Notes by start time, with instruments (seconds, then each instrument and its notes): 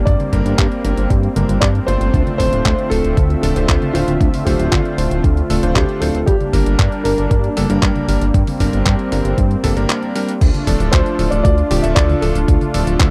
Already playing: analog synth pad G3 A#3
0.05 analog synth bass G2, analog synth pad C4, grand piano D5, kick, closed hi-hat
0.20 closed hi-hat, high conga
0.33 analog synth bass G1, electric grand piano G3 A#3 D4 A#4, kick, closed hi-hat
0.46 analog synth bass G1, closed hi-hat
0.58 analog synth bass G2, kick, clap, closed hi-hat
0.72 closed hi-hat
0.84 analog synth bass G1, electric grand piano G3 A#3 D4 A#4, closed hi-hat
0.97 analog synth bass G1, closed hi-hat
1.10 analog synth bass G2, kick, closed hi-hat
1.23 closed hi-hat
1.36 analog synth bass G1, electric grand piano G3 A#3 D4 A#4, closed hi-hat, high conga
1.49 analog synth bass G1, closed hi-hat
1.61 analog synth bass G2, grand piano D5, kick, clap, closed hi-hat
1.75 closed hi-hat
1.87 analog synth bass G1, electric grand piano A3 D4 F4 C5, grand piano C5, closed hi-hat
2.01 analog synth bass G1, closed hi-hat
2.14 analog synth bass D2, analog synth pad D3 A3 F4 E5, kick, closed hi-hat
2.27 closed hi-hat, high conga
2.38 analog synth bass D1, electric grand piano A3 D4 F4 C5, grand piano C5, kick, open hi-hat
2.52 analog synth bass D1, closed hi-hat
2.65 analog synth bass D2, kick, clap, closed hi-hat
2.79 closed hi-hat
2.90 analog synth bass D1, electric grand piano A3 D4 F4 C5, grand piano A4, open hi-hat
3.04 analog synth bass D1, closed hi-hat
3.17 analog synth bass D2, kick, closed hi-hat
3.30 closed hi-hat
3.42 analog synth bass D1, electric grand piano A3 D4 F4 A4, grand piano A4, open hi-hat, high conga
3.56 analog synth bass D1, electric grand piano A3 D4 F4 C5, closed hi-hat
3.69 analog synth bass D2, kick, clap, closed hi-hat
3.82 closed hi-hat, high conga
3.94 analog synth bass D1, electric grand piano A3 D4 F4 C5, grand piano F4, open hi-hat
4.08 analog synth bass D1, closed hi-hat
4.21 analog synth bass D2, kick, closed hi-hat
4.34 open hi-hat, high conga
4.45 analog synth bass D1, electric grand piano A3 D4 F4 C5, grand piano G4, kick, open hi-hat
4.59 analog synth bass D1, closed hi-hat
4.71 analog synth bass D2, grand piano F4, kick, clap, closed hi-hat
4.85 closed hi-hat
4.98 analog synth bass D1, electric grand piano A3 D4 F4 C5, open hi-hat
5.11 analog synth bass D1, closed hi-hat
5.24 analog synth bass D2, kick, closed hi-hat
5.37 closed hi-hat
5.50 analog synth bass D1, electric grand piano A3 D4 F4 A4, open hi-hat, high conga
5.63 analog synth bass D1, electric grand piano A3 D4 F4 C5, closed hi-hat
5.75 analog synth bass D2, grand piano G4, kick, clap, closed hi-hat
5.89 closed hi-hat
6.00 analog synth bass D1, electric grand piano A3 D4 F4 C5, grand piano A4, open hi-hat
6.15 analog synth bass D1, closed hi-hat
6.26 analog synth bass G2, analog synth pad G3 A#3 D4, grand piano G4, kick, closed hi-hat
6.41 closed hi-hat, high conga
6.53 analog synth bass G1, electric grand piano G3 A#3 D4 A#4, kick, open hi-hat
6.66 analog synth bass G1, closed hi-hat
6.79 analog synth bass G2, kick, clap, closed hi-hat
6.92 closed hi-hat
7.04 analog synth bass G1, electric grand piano G3 A#3 D4 A#4, grand piano A#4, open hi-hat
7.18 analog synth bass G1, closed hi-hat
7.30 analog synth bass G2, grand piano A#4, kick, closed hi-hat
7.44 closed hi-hat
7.57 analog synth bass G1, electric grand piano G3 A#3 D4 A4, open hi-hat, high conga
7.70 analog synth bass G1, electric grand piano G3 A#3 D4 A#4, closed hi-hat
7.83 analog synth bass G2, kick, clap, closed hi-hat
7.96 closed hi-hat, high conga
8.08 analog synth bass G1, electric grand piano G3 A#3 D4 A#4, open hi-hat
8.21 analog synth bass G1, closed hi-hat
8.34 analog synth bass G2, analog synth pad C4, kick, closed hi-hat
8.47 open hi-hat, high conga
8.60 analog synth bass G1, electric grand piano G3 A#3 D4 A#4, kick, open hi-hat
8.73 analog synth bass G1, closed hi-hat
8.86 analog synth bass G2, kick, clap, closed hi-hat
8.99 closed hi-hat
9.12 analog synth bass G1, electric grand piano G3 A#3 D4 A#4, open hi-hat
9.25 analog synth bass G1, closed hi-hat
9.38 analog synth bass G2, kick, closed hi-hat
9.51 closed hi-hat
9.64 analog synth bass G1, electric grand piano G3 A#3 D4 A4, kick, open hi-hat, high conga
9.77 analog synth bass G1, electric grand piano G3 A#3 D4 A#4, closed hi-hat
9.90 clap, closed hi-hat
10.03 closed hi-hat
10.15 electric grand piano G3 A#3 D4 A#4, open hi-hat
10.29 closed hi-hat
10.41 analog synth bass D2, analog synth pad A3 D4 F4, kick, closed hi-hat, crash, cabasa
10.54 closed hi-hat, high conga, cabasa
10.67 analog synth bass D1, electric grand piano F3 A3 D4 A4, kick, open hi-hat
10.80 analog synth bass D1, closed hi-hat, cabasa
10.92 analog synth bass D2, grand piano C5, kick, clap, closed hi-hat, cabasa
11.06 closed hi-hat, cabasa
11.19 analog synth bass D1, electric grand piano F3 A3 D4 A4, open hi-hat
11.31 analog synth bass D1, grand piano D5, closed hi-hat, cabasa
11.43 analog synth bass D2, grand piano D5, kick, closed hi-hat, cabasa
11.58 closed hi-hat, cabasa
11.71 analog synth bass D1, electric grand piano F3 A3 D4 G4, open hi-hat, high conga
11.82 analog synth bass D1, electric grand piano F3 A3 D4 A4, grand piano E5, closed hi-hat, cabasa
11.95 analog synth bass D2, grand piano D5, kick, clap, closed hi-hat, cabasa
12.10 closed hi-hat, high conga, cabasa
12.21 analog synth bass D1, electric grand piano F3 A3 D4 A4, grand piano A4, open hi-hat
12.35 analog synth bass D1, closed hi-hat, cabasa
12.48 analog synth bass D2, kick, closed hi-hat, cabasa
12.61 closed hi-hat, high conga, cabasa
12.74 analog synth bass D1, electric grand piano F3 A3 D4 A4, open hi-hat
12.87 analog synth bass D1, closed hi-hat, cabasa
13.00 analog synth bass D2, kick, clap, closed hi-hat, cabasa